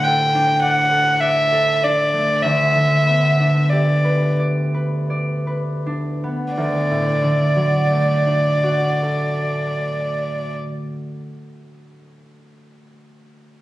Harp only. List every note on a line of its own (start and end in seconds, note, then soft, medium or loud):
0.00 2.43 D2 soft
0.00 2.48 A2 soft
0.00 2.12 A3 soft
0.00 0.33 D4 soft
0.08 0.90 A4 soft
0.34 1.83 D4 soft
0.62 1.20 D5 soft
0.91 1.51 A4 soft
1.22 4.38 D5 soft
1.52 2.47 A4 soft
1.84 3.39 D4 soft
2.13 2.47 A3 soft
2.44 6.34 D2 soft
2.75 6.62 D3 soft
3.06 6.22 B3 soft
3.40 5.85 D4 soft
3.72 6.63 G4 soft
4.04 4.73 B4 soft
4.39 5.09 D5 soft
4.74 5.46 B4 soft
5.10 9.00 D5 soft
5.47 6.62 B4 soft
5.86 8.25 D4 soft
6.24 6.62 B3 soft
6.57 10.57 D2 soft
6.91 10.90 A2 soft
7.22 11.22 D3 soft
7.56 11.55 F#3 soft
7.90 11.90 A3 soft
8.26 12.00 D4 soft
8.63 12.00 F#4 soft
9.03 12.00 A4 soft
9.43 12.00 D5 soft